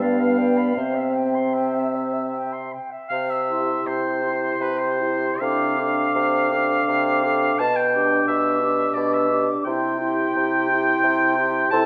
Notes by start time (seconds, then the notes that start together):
Already playing: G2
0.00 B3 B4 D5 F5
0.20 F5
0.38 D5 G5
0.57 B5
0.76 C3 C4 C5 E5
0.95 E5
1.16 G5
1.35 C6
1.53 E5 G5
1.74 E5
1.95 C5
2.14 E5
2.34 G5
2.53 C6
2.73 G5
2.91 E5
3.09 C3 F5
3.30 E5
3.48 E4 G4 C6
3.86 C3 C5
4.23 E4 G4 C6
4.60 C3 B4
4.78 C5
5.01 E4 G4 C6
5.40 C3 D4 A4 F5 D6
5.78 D4 A4 D6
6.15 C3
6.53 D4 A4 D6
6.88 C3
7.25 D4 A4 D6
7.59 B2 A5
7.76 G5
7.95 D4 G4 D6
8.28 B2 E5
8.62 D4 G4 D6
8.94 B2 D5
9.13 E5
9.31 D4 G4 D6
9.65 C3 E4 G4 G5 C6
10.01 E4 G4 C6
10.36 C3
10.70 E4 G4 C6
11.03 C3
11.38 E4 G4 C6
11.71 C3 E4 A4 A5 C6